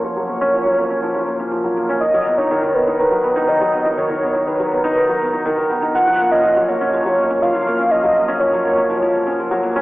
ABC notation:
X:1
M:4/4
L:1/16
Q:1/4=122
K:F#
V:1 name="Soft synth lead"
c12 z4 | d3 c3 B6 d4 | c4 B8 z4 | f3 d3 c6 e4 |
d4 c8 z4 |]
V:2 name="Felt piano" clef=bass
E, F, A, C E, F, A, C E, E, A, C E, F, A, C | D, F, B, D D, D, B, D D, F, B, D D, F, B, D | D, D, B, D D, F, B, D D, F, B, D D, D, B, D | E, E, A, C E, F, A, C E, F, A, C E, E, A, C |
E, F, A, C E, F, A, C E, E, A, C E, F, A, C |]
V:3 name="Sub bass" clef=bass
F,,,16 | F,,,16- | F,,,16 | F,,,16- |
F,,,16 |]